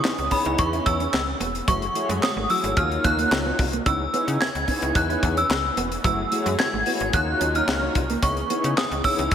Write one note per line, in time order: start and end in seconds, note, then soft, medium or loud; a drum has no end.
0.00 1.66 C#3 medium
0.00 2.74 E3 medium
0.00 0.13 B3 medium
0.00 1.66 B3 medium
0.00 1.66 C#4 medium
0.00 0.13 D#4 medium
0.00 0.13 E4 medium
0.00 0.13 G#4 medium
0.00 0.13 C#5 medium
0.00 0.29 D#6 medium
0.04 muted clean electric guitar stroke soft
0.04 snare loud
0.04 clap medium
0.18 0.28 C#2 medium
0.18 closed hi-hat soft
0.31 1.03 B3 medium
0.31 0.41 C#4 medium
0.31 1.03 D#4 medium
0.31 1.03 E4 medium
0.31 1.03 G#4 medium
0.31 1.03 C#5 medium
0.31 0.60 B5 medium
0.31 kick medium
0.31 open hi-hat medium
0.45 0.56 C#2 medium
0.45 0.55 E4 medium
0.45 closed hi-hat medium
0.58 0.80 E2 loud
0.58 0.71 C#6 medium
0.58 kick loud
0.58 closed hi-hat medium
0.73 0.82 E4 medium
0.73 closed hi-hat soft
0.86 1.07 E2 loud
0.86 1.37 E6 medium
0.86 muted clean electric guitar stroke soft
0.86 kick loud
0.86 closed hi-hat medium
1.00 1.09 C#4 medium
1.00 closed hi-hat soft
1.13 1.34 C#2 loud
1.13 snare loud
1.13 clap medium
1.40 1.62 E1 medium
1.40 1.50 B3 medium
1.40 closed hi-hat medium
1.55 closed hi-hat soft
1.67 1.89 F#1 loud
1.67 1.78 F#3 medium
1.67 1.86 A3 medium
1.67 2.76 A3 medium
1.67 1.86 E4 medium
1.67 2.76 F#4 medium
1.67 1.86 F#4 medium
1.67 2.76 G#4 medium
1.67 1.86 G#4 medium
1.67 1.86 C#5 medium
1.67 2.24 C#6 medium
1.67 kick loud
1.67 closed hi-hat medium
1.82 closed hi-hat soft
1.95 2.31 A3 medium
1.95 2.31 E4 medium
1.95 2.31 F#4 medium
1.95 2.31 G#4 medium
1.95 2.31 C#5 medium
1.95 muted clean electric guitar stroke soft
1.95 closed hi-hat medium
2.09 2.19 F#2 loud
2.09 2.18 G#3 medium
2.09 closed hi-hat medium
2.22 2.51 D#6 medium
2.22 muted clean electric guitar stroke soft
2.22 snare loud
2.22 clap medium
2.36 2.47 G#1 medium
2.36 2.45 A3 medium
2.49 2.59 F#3 medium
2.49 2.77 A3 medium
2.49 2.77 E4 medium
2.49 2.76 F#4 medium
2.49 2.77 G#4 medium
2.49 2.76 C#5 medium
2.49 2.78 E6 medium
2.49 open hi-hat medium
2.64 2.74 G#1 loud
2.64 closed hi-hat medium
2.76 2.98 D#2 loud
2.76 3.85 D#3 medium
2.76 3.85 F#3 medium
2.76 3.64 A#3 medium
2.76 3.85 C#4 medium
2.76 3.64 D#4 medium
2.76 3.85 D#4 medium
2.76 3.64 F4 medium
2.76 3.65 F#4 medium
2.76 3.65 C#5 medium
2.76 2.89 F6 loud
2.76 muted clean electric guitar stroke soft
2.76 kick loud
2.76 closed hi-hat medium
2.92 closed hi-hat soft
3.04 3.25 D#2 medium
3.04 3.14 A#3 medium
3.04 3.55 F#6 loud
3.04 kick loud
3.04 closed hi-hat medium
3.18 3.27 A#3 medium
3.18 closed hi-hat medium
3.31 3.52 C#2 loud
3.31 snare loud
3.31 clap medium
3.46 3.55 B3 medium
3.59 3.80 C2 medium
3.59 muted clean electric guitar stroke medium
3.59 kick loud
3.59 open hi-hat medium
3.73 3.82 A#3 medium
3.73 closed hi-hat soft
3.85 4.07 C#2 loud
3.85 6.02 C#3 medium
3.85 7.10 E3 medium
3.85 4.04 B3 medium
3.85 6.02 B3 medium
3.85 6.02 C#4 medium
3.85 3.96 C#4 medium
3.85 4.04 D#4 medium
3.85 4.04 E4 medium
3.85 4.04 G#4 medium
3.85 4.04 C#5 medium
3.85 4.42 E6 medium
3.85 kick loud
3.85 closed hi-hat medium
4.01 muted clean electric guitar stroke soft
4.13 4.49 B3 medium
4.13 4.23 B3 medium
4.13 4.49 D#4 medium
4.13 4.49 E4 medium
4.13 4.49 G#4 medium
4.13 4.49 C#5 medium
4.13 closed hi-hat medium
4.28 4.38 C#3 loud
4.28 closed hi-hat medium
4.41 4.92 G#6 loud
4.41 muted clean electric guitar stroke soft
4.41 snare loud
4.41 clap medium
4.55 4.65 C#2 medium
4.55 closed hi-hat soft
4.67 5.39 B3 medium
4.67 4.78 C#4 medium
4.67 5.39 D#4 medium
4.67 5.39 E4 medium
4.67 5.40 G#4 medium
4.67 5.40 C#5 medium
4.67 kick medium
4.67 open hi-hat medium
4.82 4.92 C#2 medium
4.82 4.91 E4 medium
4.82 closed hi-hat medium
4.95 5.16 E2 medium
4.95 5.38 F#6 medium
4.95 kick loud
4.95 closed hi-hat medium
5.10 5.18 E4 medium
5.10 closed hi-hat soft
5.23 5.44 E2 loud
5.23 muted clean electric guitar stroke soft
5.23 kick loud
5.23 closed hi-hat medium
5.37 5.46 C#4 medium
5.37 5.75 E6 medium
5.37 closed hi-hat medium
5.50 5.71 C#2 medium
5.50 snare loud
5.50 clap medium
5.77 5.98 E1 medium
5.77 5.87 B3 medium
5.77 closed hi-hat medium
5.92 closed hi-hat medium
6.04 6.25 F#1 loud
6.04 6.14 F#3 medium
6.04 6.22 A3 medium
6.04 7.12 A3 medium
6.04 6.22 E4 medium
6.04 6.22 F#4 medium
6.04 7.12 F#4 medium
6.04 7.12 G#4 medium
6.04 6.23 G#4 medium
6.04 6.23 C#5 medium
6.04 6.55 E6 medium
6.04 kick loud
6.04 closed hi-hat medium
6.31 6.67 A3 medium
6.31 6.67 E4 medium
6.31 6.67 F#4 medium
6.31 6.68 G#4 medium
6.31 6.68 C#5 medium
6.31 muted clean electric guitar stroke medium
6.31 closed hi-hat medium
6.46 6.56 F#2 loud
6.46 6.55 G#3 medium
6.46 closed hi-hat medium
6.59 7.15 G#6 loud
6.59 muted clean electric guitar stroke soft
6.59 snare loud
6.59 clap medium
6.73 6.83 G#1 medium
6.73 6.82 A3 medium
6.86 7.13 A3 medium
6.86 6.96 B3 medium
6.86 7.13 E4 medium
6.86 7.12 F#4 medium
6.86 7.13 G#4 medium
6.86 7.13 C#5 medium
6.86 open hi-hat medium
7.00 7.11 G#1 loud
7.00 closed hi-hat medium
7.13 7.35 D#2 loud
7.13 8.21 D#3 medium
7.13 8.21 F#3 medium
7.13 8.01 A#3 medium
7.13 8.21 C#4 medium
7.13 8.01 D#4 medium
7.13 8.21 D#4 medium
7.13 8.01 F4 medium
7.13 8.01 F#4 medium
7.13 8.01 C#5 medium
7.13 7.53 F#6 loud
7.13 muted clean electric guitar stroke soft
7.13 kick loud
7.13 closed hi-hat medium
7.41 7.62 D#2 medium
7.41 7.51 C#4 medium
7.41 closed hi-hat medium
7.55 7.64 D#4 medium
7.55 7.93 F6 medium
7.55 closed hi-hat medium
7.68 7.89 C#2 loud
7.68 snare loud
7.68 clap medium
7.83 7.91 C#4 medium
7.95 8.16 C2 medium
7.95 muted clean electric guitar stroke soft
7.95 kick loud
7.95 closed hi-hat medium
8.10 8.19 A#3 medium
8.10 closed hi-hat soft
8.22 8.44 C#2 loud
8.22 9.35 C#3 medium
8.22 9.35 E3 medium
8.22 8.41 B3 medium
8.22 9.35 B3 medium
8.22 9.35 C#4 medium
8.22 8.33 C#4 loud
8.22 8.41 D#4 medium
8.22 8.41 E4 medium
8.22 8.41 G#4 medium
8.22 8.41 C#5 medium
8.22 8.79 C#6 medium
8.22 kick loud
8.22 closed hi-hat medium
8.37 muted clean electric guitar stroke soft
8.37 closed hi-hat soft
8.50 8.86 B3 medium
8.50 8.60 B3 medium
8.50 8.86 D#4 medium
8.50 8.86 E4 medium
8.50 8.86 G#4 medium
8.50 8.86 C#5 medium
8.50 closed hi-hat medium
8.64 8.74 C#3 loud
8.64 closed hi-hat medium
8.77 8.90 D#6 medium
8.77 muted clean electric guitar stroke soft
8.77 snare loud
8.77 clap medium
8.91 9.01 C#2 medium
8.91 closed hi-hat soft
9.04 9.35 B3 medium
9.04 9.14 C#4 medium
9.04 9.35 D#4 medium
9.04 9.35 E4 medium
9.04 9.35 G#4 medium
9.04 9.35 C#5 medium
9.04 9.35 E6 loud
9.04 kick medium
9.04 open hi-hat medium
9.18 9.29 C#2 medium
9.18 9.28 E4 medium
9.18 closed hi-hat medium
9.31 9.35 E2 loud
9.31 kick loud
9.31 closed hi-hat medium